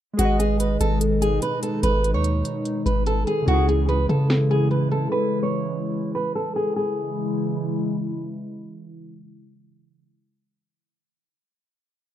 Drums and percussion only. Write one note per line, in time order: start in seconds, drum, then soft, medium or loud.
0.19 closed hi-hat medium
0.40 closed hi-hat medium
0.60 closed hi-hat medium
0.81 closed hi-hat medium
1.01 closed hi-hat medium
1.22 closed hi-hat medium
1.42 closed hi-hat medium
1.63 closed hi-hat medium
1.83 closed hi-hat medium
2.04 closed hi-hat medium
2.24 closed hi-hat medium
2.45 closed hi-hat medium
2.65 closed hi-hat medium
2.86 closed hi-hat medium
3.06 closed hi-hat medium
3.27 closed hi-hat medium
3.48 closed hi-hat medium
3.69 closed hi-hat medium
3.89 closed hi-hat medium
4.09 closed hi-hat medium
4.30 snare loud
4.30 closed hi-hat medium
4.51 closed hi-hat medium
4.71 closed hi-hat medium
4.92 closed hi-hat medium